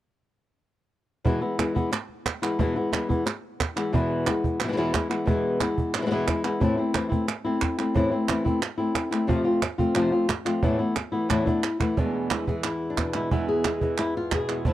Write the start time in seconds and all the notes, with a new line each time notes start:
1.25 E2 B2 E3 G#3 B3 E4, cajon bass
1.41 E3 G#3 B3 E4
1.58 E3 G#3 B3 E4, cajon slap, clap
1.75 E3 G#3 B3 E4, cajon bass
1.92 muted nylon-string guitar stroke, clap
2.09 cajon slap
2.26 cajon slap, clap
2.42 E3 G#3 B3 E4, clap
2.59 E2 B2 E3 G#3 B3 E4, cajon bass
2.76 E3 G#3 B3 E4
2.92 E3 G#3 B3 E4, cajon slap, clap
3.09 E3 G#3 B3 E4, cajon bass
3.26 muted nylon-string guitar stroke, clap
3.60 cajon bass, cajon slap, clap
3.76 E3 G#3 B3 E4, clap
3.93 E2 B2 E3 G#3 B3 E4, cajon bass
4.27 E3 G#3 B3 E4, cajon slap, clap
4.44 cajon bass
4.60 B2 E3, muted nylon-string guitar stroke, clap
4.64 B2 E3 B3 E4
4.69 B2 G#3 B3 E4
4.73 E3 G#3 B3 E4
4.77 E2 B2 E3 G#3 B3 E4, cajon slap
4.93 E3 G#3 B3 E4, cajon bass, cajon slap, clap
5.10 E3 G#3 B3 E4, clap
5.26 E2 B2 E3 G#3 B3 E4, cajon bass
5.60 E3 G#3 B3 E4, cajon slap, clap
5.78 cajon bass
5.94 B2 G#3, muted nylon-string guitar stroke, clap
5.98 B2 E3 G#3 E4
6.03 B2 E3 B3 E4
6.07 E2 B2 G#3 B3 E4
6.11 E3 G#3 B3 E4
6.27 E3 G#3 B3 E4, cajon bass, cajon slap, clap
6.44 E3 G#3 B3 E4, clap
6.60 A2 E3 A3 C4 E4, cajon bass
6.77 A3 C4 E4
6.93 E3 A3 C4 E4, cajon slap, clap
7.09 A3 C4 E4, cajon bass
7.28 muted nylon-string guitar stroke, clap
7.45 A3 C4 E4, cajon slap
7.62 cajon bass, cajon slap, clap
7.78 A3 C4 E4, clap
7.94 A2 E3 A3 C4 E4, cajon bass
8.11 A3 C4 E4, cajon slap
8.28 E3 A3 C4 E4, cajon slap, clap
8.45 A3 C4 E4, cajon bass
8.61 muted nylon-string guitar stroke, clap
8.78 A3 C4 E4
8.95 cajon slap, clap
9.11 A3 C4 E4, clap
9.27 F2 C3 F3 A3 C4 F4, cajon bass
9.44 F3 A3 C4 F4
9.62 muted nylon-string guitar stroke, cajon slap, clap
9.78 F3 A3 C4 F4, cajon bass
9.95 F2 C3 F3 A3 C4 F4, clap
10.12 F3 A3 C4 F4, cajon slap
10.28 muted nylon-string guitar stroke, cajon slap, clap
10.45 F3 A3 C4 F4, clap
10.62 E2 A2 E3 A3 B3 E4, cajon bass
10.79 E3 A3 B3 E4
10.96 muted nylon-string guitar stroke, cajon slap, clap
11.12 E3 A3 B3 E4
11.29 E2 A2 E3 A3 B3 E4, cajon bass, clap
11.46 E3 A3 B3 D4 E4, cajon bass
11.63 E4, muted nylon-string guitar stroke, clap
11.80 E3 A3 B3 E4, cajon bass, clap
11.97 E2 B2 E3 G#3 B3 D4 E4, cajon bass
12.15 E4
12.31 E3 G#3 B3 E4, cajon slap, clap
12.47 E3 G#3 B3 E4 G#4, cajon bass
12.64 E4, muted nylon-string guitar stroke, clap
12.90 D4
12.98 B2, cajon bass, cajon slap, clap
13.14 E3 G#3 B3 E4, clap
13.31 E2 B2 E3 G#3 B3 E4, cajon bass
13.49 G#4
13.65 E3 G#3 B3 E4, cajon slap, clap
13.81 E3 G#3 B3 E4, cajon bass
13.98 E4, muted nylon-string guitar stroke, clap
14.15 F4, cajon slap
14.32 B2 G#4, cajon bass, cajon slap, clap
14.49 E3 G#3 B3 E4, clap
14.65 D3 F3 A3 D4 E4, cajon bass